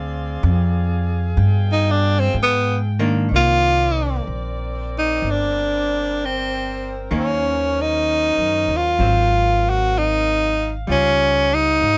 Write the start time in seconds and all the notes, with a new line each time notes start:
Already playing: D2 C4 G#4 D5 F5
0.43 F2
1.37 G2 B2 G5
1.72 D#4
1.91 D4
2.19 C4
2.34 G#2
2.43 B3
2.99 D#3 A#3 D4
3.29 C2 D#3 C4 A#4 C5 D5
3.35 A#3 F4
4.27 A#1
4.98 D#4
5.22 G1
5.30 D4
6.25 C4
7.10 D#2 D#3 F#3 A#3 C#4
7.18 C#4
7.81 D#4
8.37 F#2
8.68 D#2
8.76 F4
8.99 G#1 F#3 C4 A#4 F5
9.69 F#4
9.98 D#4
10.87 C#2 G3 D#4 F4 G4 C5
10.91 C#4
11.54 D#4
11.81 G#2